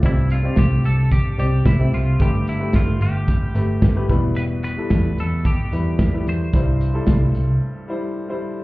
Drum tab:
HH |xxxxxxxx|xxxxxxxx|xxxxxxxx|xxxx----|
SD |--o---o-|--o---o-|--o---o-|--o-----|
BD |o-o-o-o-|o-o-o-oo|--o-o-o-|o-o-----|